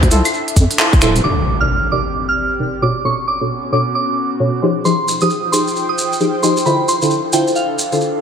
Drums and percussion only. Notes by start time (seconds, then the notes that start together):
0.03 kick, closed hi-hat
0.11 closed hi-hat, shekere
0.25 closed hi-hat, claves, shekere
0.34 shekere
0.48 closed hi-hat
0.56 kick, closed hi-hat, shekere
0.71 closed hi-hat, shekere
0.79 clap, shekere
0.93 kick, closed hi-hat
1.01 finger snap, closed hi-hat, shekere
1.16 closed hi-hat, shekere
4.85 shekere
5.08 shekere
5.21 shekere
5.30 shekere
5.53 shekere
5.68 shekere
5.76 shekere
5.98 shekere
6.13 shekere
6.20 shekere
6.43 shekere
6.57 shekere
6.66 shekere
6.88 shekere
7.02 shekere
7.10 shekere
7.33 shekere
7.47 shekere
7.55 shekere
7.79 shekere
7.92 shekere
8.01 shekere